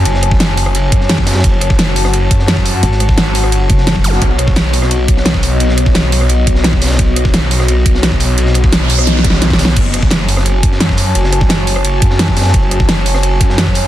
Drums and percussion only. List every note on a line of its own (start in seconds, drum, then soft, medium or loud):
0.05 closed hi-hat medium
0.05 ride loud
0.14 snare soft
0.23 cross-stick soft
0.23 closed hi-hat loud
0.23 ride medium
0.31 kick loud
0.31 snare soft
0.40 snare loud
0.40 closed hi-hat medium
0.40 ride medium
0.57 open hi-hat medium
0.57 ride medium
0.66 cross-stick medium
0.75 closed hi-hat medium
0.75 ride medium
0.92 kick loud
0.92 closed hi-hat loud
0.92 ride medium
1.01 snare medium
1.09 snare loud
1.09 closed hi-hat medium
1.09 ride medium
1.18 kick medium
1.18 snare soft
1.26 snare medium
1.26 open hi-hat medium
1.26 ride medium
1.31 snare medium
1.31 ride medium
1.35 snare loud
1.35 ride medium
1.40 snare medium
1.40 ride medium
1.44 kick loud
1.44 closed hi-hat medium
1.44 ride medium
1.54 ride soft
1.61 cross-stick soft
1.61 closed hi-hat medium
1.61 ride medium
1.70 kick loud
1.70 snare soft
1.79 snare loud
1.79 closed hi-hat medium
1.79 ride medium
1.96 open hi-hat medium
1.96 ride medium
2.05 cross-stick medium
2.05 snare medium
2.14 closed hi-hat medium
2.14 ride medium
2.31 kick loud
2.31 closed hi-hat medium
2.31 ride medium
2.39 snare medium
2.48 snare loud
2.48 closed hi-hat medium
2.48 ride loud
2.57 kick medium
2.57 cross-stick soft
2.57 snare medium
2.66 open hi-hat medium
2.66 ride medium
2.83 closed hi-hat medium
2.83 ride medium
2.92 snare soft
3.00 cross-stick soft
3.00 closed hi-hat medium
3.00 ride medium
3.09 kick loud
3.09 snare soft
3.18 snare loud
3.18 closed hi-hat medium
3.18 ride medium
3.35 open hi-hat medium
3.35 ride medium
3.44 cross-stick soft
3.52 closed hi-hat medium
3.52 ride medium
3.69 kick loud
3.69 closed hi-hat medium
3.69 ride medium
3.78 snare medium
3.87 snare loud
3.87 closed hi-hat medium
3.87 ride medium
3.96 kick medium
3.96 snare soft
4.04 open hi-hat medium
4.04 ride medium
4.13 snare medium
4.22 kick loud
4.22 closed hi-hat medium
4.22 ride medium
4.31 ride soft
4.38 cross-stick soft
4.38 closed hi-hat medium
4.38 ride medium
4.47 kick loud
4.47 snare soft
4.56 snare loud
4.56 closed hi-hat medium
4.56 ride loud
4.73 open hi-hat medium
4.73 ride medium
4.82 cross-stick soft
4.82 snare soft
4.91 closed hi-hat medium
4.91 ride loud
5.08 kick loud
5.08 closed hi-hat loud
5.08 ride medium
5.17 snare medium
5.25 snare loud
5.25 closed hi-hat medium
5.25 ride medium
5.34 kick medium
5.34 cross-stick soft
5.34 snare medium
5.43 open hi-hat medium
5.43 ride medium
5.60 closed hi-hat medium
5.60 ride loud
5.69 snare soft
5.77 cross-stick soft
5.77 closed hi-hat loud
5.77 ride medium
5.86 kick loud
5.86 snare soft
5.95 snare loud
5.95 closed hi-hat medium
5.95 ride medium
6.12 open hi-hat medium
6.12 ride medium
6.21 cross-stick soft
6.29 closed hi-hat medium
6.29 ride medium
6.47 kick loud
6.47 closed hi-hat loud
6.47 ride medium
6.55 snare medium
6.64 snare loud
6.64 closed hi-hat medium
6.64 ride medium
6.73 kick medium
6.73 snare soft
6.82 snare medium
6.82 open hi-hat medium
6.82 ride medium
6.86 snare medium
6.86 ride medium
6.90 snare medium
6.90 ride medium
6.95 snare medium
6.95 ride medium
6.99 kick loud
6.99 closed hi-hat medium
6.99 ride medium
7.08 ride soft
7.16 cross-stick soft
7.16 closed hi-hat loud
7.16 ride medium
7.25 kick loud
7.25 snare soft
7.33 snare loud
7.33 closed hi-hat medium
7.33 ride loud
7.51 open hi-hat medium
7.51 ride medium
7.60 cross-stick soft
7.60 snare medium
7.68 closed hi-hat medium
7.68 ride medium
7.86 kick loud
7.86 closed hi-hat loud
7.86 ride medium
7.95 snare medium
8.03 snare loud
8.03 closed hi-hat medium
8.03 ride loud
8.12 kick medium
8.12 cross-stick soft
8.12 snare medium
8.20 open hi-hat medium
8.20 ride medium
8.38 closed hi-hat medium
8.38 ride medium
8.46 snare soft
8.54 cross-stick soft
8.54 closed hi-hat loud
8.54 ride medium
8.63 kick loud
8.63 snare soft
8.72 snare loud
8.72 closed hi-hat medium
8.72 ride medium
8.90 open hi-hat medium
8.90 ride medium
8.98 cross-stick soft
9.07 snare medium
9.07 closed hi-hat medium
9.07 ride medium
9.16 snare soft
9.19 snare medium
9.24 kick loud
9.24 snare loud
9.24 closed hi-hat loud
9.24 ride medium
9.30 snare medium
9.30 ride medium
9.33 snare loud
9.42 snare medium
9.42 snare loud
9.42 closed hi-hat medium
9.42 ride medium
9.50 kick medium
9.50 snare loud
9.50 ride medium
9.53 snare loud
9.58 snare loud
9.58 open hi-hat medium
9.58 ride medium
9.65 snare loud
9.67 snare loud
9.67 ride medium
9.76 kick loud
9.76 closed hi-hat medium
9.76 crash medium
9.76 ride loud
9.85 ride soft
9.93 cross-stick soft
9.93 closed hi-hat loud
9.93 ride medium
10.03 kick loud
10.03 snare soft
10.10 snare loud
10.10 closed hi-hat medium
10.10 ride medium
10.29 open hi-hat medium
10.29 ride medium
10.37 cross-stick medium
10.37 snare medium
10.46 closed hi-hat medium
10.46 ride medium
10.63 kick loud
10.63 closed hi-hat loud
10.63 ride medium
10.72 snare medium
10.80 snare loud
10.80 closed hi-hat medium
10.80 ride loud
10.89 kick medium
10.89 cross-stick soft
10.89 snare medium
10.97 open hi-hat medium
10.97 ride medium
11.15 closed hi-hat medium
11.15 ride medium
11.24 snare soft
11.33 cross-stick soft
11.33 closed hi-hat loud
11.33 ride medium
11.41 kick loud
11.41 snare soft
11.49 snare loud
11.49 closed hi-hat medium
11.49 ride medium
11.67 open hi-hat medium
11.67 ride medium
11.76 cross-stick medium
11.85 closed hi-hat medium
11.85 ride loud
12.02 kick loud
12.02 closed hi-hat loud
12.02 ride medium
12.10 snare medium
12.19 snare loud
12.19 closed hi-hat medium
12.19 ride loud
12.28 kick medium
12.28 snare soft
12.37 snare medium
12.37 open hi-hat medium
12.37 ride medium
12.41 snare medium
12.41 ride medium
12.45 snare medium
12.45 ride medium
12.49 snare medium
12.49 ride medium
12.54 kick loud
12.54 closed hi-hat medium
12.54 ride medium
12.63 ride soft
12.71 cross-stick soft
12.71 closed hi-hat loud
12.71 ride medium
12.80 kick loud
12.80 snare soft
12.88 snare loud
12.88 closed hi-hat medium
12.88 ride medium
13.06 open hi-hat medium
13.06 ride medium
13.14 cross-stick medium
13.14 snare medium
13.23 closed hi-hat medium
13.23 ride loud
13.41 kick loud
13.41 closed hi-hat loud
13.41 ride medium
13.50 snare medium
13.58 snare loud
13.58 closed hi-hat medium
13.58 ride medium
13.66 kick medium
13.66 cross-stick soft
13.66 snare medium
13.75 open hi-hat medium
13.75 ride medium